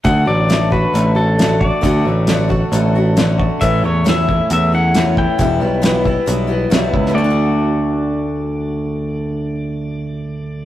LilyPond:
<<
  \new Staff \with { instrumentName = "Pedal steel guitar" } { \time 4/4 \key d \major \tempo 4 = 135 fis''8 d''4 b'4 a'4 d''8~ | d''4. r2 r8 | e''8 cis''8 e''4 e''8 fis''4 g''8~ | g''2. r4 |
d''1~ | d''1 | }
  \new Staff \with { instrumentName = "Clean electric guitar" } { \time 4/4 \key d \major d8 a8 d'8 fis'8 a8 d'8 a8 fis'8 | d8 a8 d'8 fis'8 a8 d'8 a8 fis'8 | a,8 a8 cis'8 e'8 a8 cis'8 a8 e'8 | e,8 g8 b8 e'8 g8 b8 g8 e'8 |
<d a d' fis'>1~ | <d a d' fis'>1 | }
  \new Staff \with { instrumentName = "Steel-string acoustic guitar" } { \time 4/4 \key d \major <d a d' fis'>8 <a d' fis'>8 <d a d' fis'>8 <a d' fis'>8 <d a d' fis'>8 <a d' fis'>8 <d a d' fis'>4 | <d a d' fis'>8 <a d' fis'>8 <d a d' fis'>8 <a d' fis'>8 <d a d' fis'>8 <a d' fis'>8 <d a d' fis'>4 | <a, e a cis' e'>8 <a cis' e'>8 <a, e a cis' e'>8 <a cis' e'>8 <e a cis' e'>8 <a cis' e'>8 <a, e a cis' e'>4 | <e, b, e g b e'>8 <e g b e'>8 <e, b, e g b e'>8 <e g b e'>8 <e g b e'>8 <e g b e'>8 <e, b, e g b e'>4 |
<d a d' fis'>1~ | <d a d' fis'>1 | }
  \new Staff \with { instrumentName = "Picked electric bass" } { \clef bass \time 4/4 \key d \major d,8 a,,4. a,,2 | d,8 a,,4. a,,2 | a,,8 e,4. e,2 | e,,8 b,,4. b,,4 b,,8 cis,8 |
d,1~ | d,1 | }
  \new DrumStaff \with { instrumentName = "Drums" } \drummode { \time 4/4 <hh bd>4 <hh sn>8 bd8 hh4 <hh sn>8 bd8 | <hh bd>4 <hh sn>8 bd8 hh4 <hh sn>8 bd8 | <hh bd>4 <hh sn>8 bd8 hh4 <hh sn>8 bd8 | <hh bd>4 <hh sn>8 bd8 hh4 <hh sn>8 bd16 sn16 |
r4 r4 r4 r4 | r4 r4 r4 r4 | }
>>